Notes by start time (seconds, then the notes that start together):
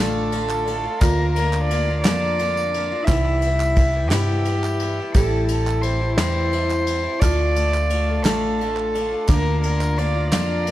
Already playing: D3 A3 D4 F4 A4 D5 A5
0.00 A1 D4 F4
0.32 D3 A3 D4 F4, ride
0.50 clap, tambourine
0.65 D3 A3 D4, ride
0.69 F4
0.84 A3 D4 F4
0.99 D2 D3 A#3 D4 F4 A#4 A#5, kick, clap, ride, tambourine
1.03 F4
1.33 A#4, ride
1.37 D3 A#3 D4 F4
1.52 clap, tambourine
1.65 D5
1.71 D3 A#3 D4 F4, ride
1.88 A#3 D4 F4
2.02 F2 D3 A#3 D5, snare, clap, ride, tambourine
2.07 D4 F4
2.39 D3 A#3 D4 F4, ride
2.57 tambourine
2.74 D3 A#3 D4 F4, ride
2.92 A#3 D4 F4
3.03 D#4 E5
3.08 C2 C3 E3 G3 B3 E4 G4 E5 B5, kick, clap, ride, tambourine
3.12 E4
3.26 clap
3.42 E3 G3, ride
3.46 B3 E4
3.60 clap, tambourine
3.76 E3 G3 B3 E4, kick, clap, ride
3.94 B3 E4, clap
3.98 G3
4.08 G2 C3 E3 G4, snare, clap, ride, tambourine
4.13 G3 B3 E4
4.45 E3 G3, clap, ride
4.49 B3 E4
4.64 clap, tambourine
4.80 E3 G3, clap, ride
4.84 B3 E4
5.00 G3 B3 E4
5.12 A1 A2 E3 G4 A4 A5, kick, clap, ride, tambourine
5.16 G3 C4 E4
5.48 E3 G3 C4 A4, ride
5.53 E4
5.67 clap, tambourine
5.82 E3 C5, ride
5.86 G3 C4 E4
6.01 G3 C4 E4
6.17 E2 A2 E3 G3 C4 E4 C5, snare, clap, ride, tambourine
6.52 E3 G3 C4 E4, ride
6.70 clap, tambourine
6.87 E3 G3 C4 E4, ride
7.03 G3 C4 E4
7.19 D2 D3 A3 D4 F4 A4 D5, kick, clap, ride, tambourine
7.56 D3 A3 D4 F4, ride
7.74 clap, tambourine
7.90 D3 A3 D4 F4, ride
8.08 A3 D4 F4
8.23 A1 D3 A3 D4 A4, snare, clap, ride, tambourine
8.27 F4
8.59 D3 A3 D4 F4, ride
8.77 clap
8.94 D3 A3 D4 F4, ride
9.11 A3 D4 F4
9.28 D2 D3 A#3 D4 F4 A#4 A#5, kick, clap, ride, tambourine
9.63 D3 A#3 D4 F4 A#4, ride
9.80 clap, tambourine
9.97 D3 A#3 D4 F4 D5, ride
10.15 A#3 D4 F4
10.31 F2 D3 A#3 D4 F4 D5, snare, clap, ride, tambourine
10.67 D3 A#3, ride